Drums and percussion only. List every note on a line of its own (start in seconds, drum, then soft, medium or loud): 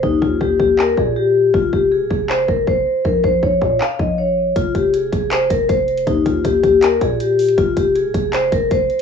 0.03 kick loud
0.22 kick medium
0.41 kick loud
0.60 kick loud
0.79 clap loud
0.97 kick loud
1.54 kick loud
1.73 kick medium
2.11 kick loud
2.30 clap loud
2.48 kick loud
2.67 kick loud
3.05 kick loud
3.24 kick medium
3.43 kick loud
3.62 kick loud
3.81 clap loud
3.99 kick loud
4.56 kick loud
4.56 closed hi-hat medium
4.75 kick medium
4.75 closed hi-hat medium
4.94 closed hi-hat medium
5.13 kick loud
5.13 closed hi-hat medium
5.31 clap loud
5.31 closed hi-hat medium
5.50 kick loud
5.50 closed hi-hat medium
5.69 kick loud
5.69 closed hi-hat medium
5.88 closed hi-hat soft
5.97 closed hi-hat medium
6.07 kick loud
6.07 closed hi-hat medium
6.26 kick medium
6.26 closed hi-hat medium
6.45 kick loud
6.45 closed hi-hat medium
6.63 kick loud
6.63 closed hi-hat medium
6.82 clap loud
6.82 closed hi-hat medium
7.01 kick loud
7.01 closed hi-hat medium
7.20 closed hi-hat medium
7.39 closed hi-hat soft
7.39 open hi-hat medium
7.48 closed hi-hat medium
7.58 kick loud
7.58 closed hi-hat medium
7.77 kick medium
7.77 closed hi-hat medium
7.95 closed hi-hat medium
8.14 kick loud
8.14 closed hi-hat medium
8.33 clap loud
8.33 closed hi-hat medium
8.52 kick loud
8.52 closed hi-hat medium
8.71 kick loud
8.71 closed hi-hat medium
8.90 closed hi-hat soft